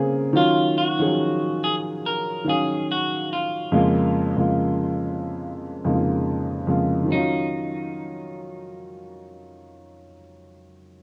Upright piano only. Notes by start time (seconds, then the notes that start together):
Already playing: C#3 A#3 C4 G#4 A#4
0.33 D#3 F#3 C#4 F4
0.99 D#3 F3 C#4 G#4
1.06 F#3
2.45 D#3 F#3 C#4 F5
3.72 F2 C#3 G#3 A#3 F4
4.36 F2 C#3 G#3 A#3 F4
5.84 F2 C#3 G#3 A#3 D#4
5.94 F4
6.67 F2 C#3 G#3 A#3 F4
7.04 D#3 F#3
7.12 C#4
7.16 F4